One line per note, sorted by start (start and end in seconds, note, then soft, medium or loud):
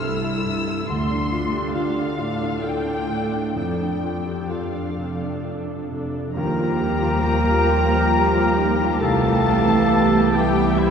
0.00 0.84 C2 soft
0.00 0.46 G2 soft
0.00 0.38 A3 soft
0.00 0.24 E4 soft
0.00 0.45 E4 soft
0.00 0.92 G4 soft
0.00 0.45 A4 soft
0.00 0.92 A4 soft
0.00 0.89 E6 medium
0.04 0.79 C2 medium
0.24 0.59 E4 soft
0.46 0.80 G2 soft
0.46 0.89 E4 soft
0.46 0.89 A4 soft
0.68 0.89 E4 soft
0.89 1.65 D2 medium
0.89 3.52 D2 medium
0.89 1.74 C6 medium
1.10 1.45 D4 soft
1.31 2.18 D4 soft
1.31 1.66 F4 soft
1.31 2.18 A4 soft
1.53 1.75 G4 soft
1.74 2.53 D2 medium
1.74 2.11 F4 soft
1.74 2.62 F5 medium
1.96 2.33 D4 soft
2.18 2.55 A2 soft
2.18 3.08 D4 soft
2.18 3.08 A4 soft
2.41 2.78 D4 soft
2.64 3.45 D2 soft
2.64 3.00 A3 soft
2.64 3.55 G5 medium
2.86 3.23 D4 soft
3.09 3.47 A2 soft
3.09 3.55 D4 soft
3.09 3.54 A4 soft
3.33 3.56 D4 soft
3.56 4.40 F2 soft
3.56 6.33 F2 soft
3.56 4.03 D4 soft
3.56 4.02 A4 soft
3.56 4.49 G5 medium
3.80 4.18 D4 soft
4.03 4.96 D4 soft
4.03 4.41 F4 soft
4.03 4.96 A4 soft
4.27 4.51 G4 soft
4.50 5.34 F2 soft
4.50 4.89 F4 soft
4.50 5.45 F5 soft
4.74 5.12 D4 soft
4.98 5.36 C3 soft
4.98 5.90 D4 soft
4.98 5.90 A4 soft
5.22 5.59 D4 soft
5.44 6.26 F2 soft
5.44 5.82 A3 soft
5.68 6.06 D4 soft
5.91 6.28 C3 soft
5.91 6.37 D4 soft
5.91 6.37 A4 soft
6.15 6.37 D4 soft
6.36 8.97 D#2 medium
6.36 8.97 F3 medium
6.36 8.98 F3 medium
6.36 10.90 G3 medium
6.36 8.97 A#3 medium
6.36 10.90 G4 soft
6.36 10.90 G4 medium
6.36 8.97 A#4 medium
6.36 8.97 G5 medium
6.36 8.97 A#5 medium
6.60 6.95 F4 soft
6.81 7.16 G4 soft
7.02 7.38 F4 soft
7.25 7.60 A#3 soft
7.47 7.82 G4 soft
7.69 8.04 F4 soft
7.91 8.26 A#3 soft
8.12 8.48 G4 soft
8.35 8.70 F4 soft
8.58 8.80 D#4 soft
8.80 9.02 F4 soft
9.00 10.90 C2 medium
9.00 10.90 E3 medium
9.00 10.34 A3 medium
9.00 10.90 B3 medium
9.00 10.34 A4 medium
9.00 10.36 A4 medium
9.00 10.36 F5 medium
9.00 10.34 A5 medium
9.23 9.59 E3 soft
9.45 9.81 G4 soft
9.68 10.03 E3 soft
9.90 10.26 B3 soft
10.12 10.47 G4 soft
10.33 10.78 G3 medium
10.33 10.70 E4 soft
10.33 10.78 G4 medium
10.33 10.80 G4 medium
10.33 10.79 E5 medium
10.33 10.77 G5 medium
10.57 10.90 B3 soft
10.76 10.90 E3 medium
10.76 10.90 E4 medium
10.76 10.90 G4 medium
10.76 10.90 C5 medium
10.76 10.90 E5 medium